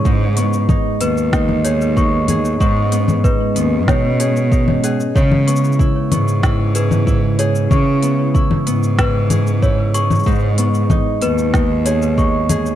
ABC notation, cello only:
X:1
M:4/4
L:1/8
Q:1/4=94
K:C#m
V:1 name="Cello" clef=bass
G,,2 z D,,4- D,, | G,,2 z D,, B,,3 z | C,2 z G,,4- G,, | C,2 z G,,4- G,, |
G,,2 z D,,4- D,, |]